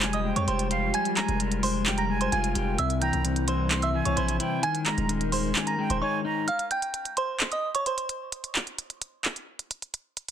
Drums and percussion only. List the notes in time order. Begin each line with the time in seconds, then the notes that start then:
0.02 clap, closed hi-hat
0.13 closed hi-hat
0.36 closed hi-hat
0.48 closed hi-hat
0.59 closed hi-hat
0.71 closed hi-hat
0.94 closed hi-hat
1.05 closed hi-hat
1.17 clap, closed hi-hat
1.28 closed hi-hat
1.40 closed hi-hat
1.52 closed hi-hat
1.63 open hi-hat
1.86 clap, closed hi-hat
1.98 closed hi-hat
2.21 closed hi-hat
2.32 closed hi-hat
2.44 closed hi-hat
2.55 closed hi-hat
2.78 closed hi-hat
2.90 closed hi-hat
3.02 closed hi-hat
3.13 closed hi-hat
3.25 closed hi-hat
3.36 closed hi-hat
3.48 closed hi-hat
3.71 clap, closed hi-hat
3.82 closed hi-hat
4.05 closed hi-hat
4.17 closed hi-hat
4.28 closed hi-hat
4.40 closed hi-hat
4.63 closed hi-hat
4.75 closed hi-hat
4.86 clap, closed hi-hat
4.98 closed hi-hat
5.09 closed hi-hat
5.21 closed hi-hat
5.32 open hi-hat
5.55 clap, closed hi-hat
5.67 closed hi-hat
5.90 closed hi-hat
6.48 closed hi-hat
6.59 closed hi-hat
6.71 closed hi-hat
6.82 closed hi-hat
6.94 closed hi-hat
7.05 closed hi-hat
7.17 closed hi-hat
7.40 clap, closed hi-hat
7.52 closed hi-hat
7.75 closed hi-hat
7.86 closed hi-hat
7.98 closed hi-hat
8.09 closed hi-hat
8.32 closed hi-hat
8.44 closed hi-hat
8.55 clap, closed hi-hat
8.67 closed hi-hat
8.78 closed hi-hat
8.90 closed hi-hat
9.02 closed hi-hat
9.25 clap, closed hi-hat
9.36 closed hi-hat
9.59 closed hi-hat
9.71 closed hi-hat
9.82 closed hi-hat
9.94 closed hi-hat
10.17 closed hi-hat
10.28 closed hi-hat